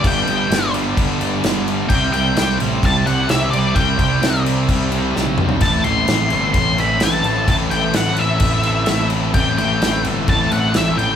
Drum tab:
CC |x-x-x-x-x-x-x-x-|x-x-x-x-x-x-x-x-|x-x-x-x-x-x-----|x-x-x-x-x-x-x-x-|
SD |----o-------o---|----o-------o---|----o-------o---|----o-------o---|
T1 |----------------|----------------|-------------o--|----------------|
T2 |----------------|----------------|--------------o-|----------------|
FT |----------------|----------------|---------------o|----------------|
BD |o-------o-------|o-------o-------|o-o-----o-------|o-------o-------|

CC |x-x-x-x-x-x-x-x-|x-x-x-x-x-x-x-x-|
SD |----o-------o---|----o-------o---|
T1 |----------------|----------------|
T2 |----------------|----------------|
FT |----------------|----------------|
BD |o-------o-------|o-------o-------|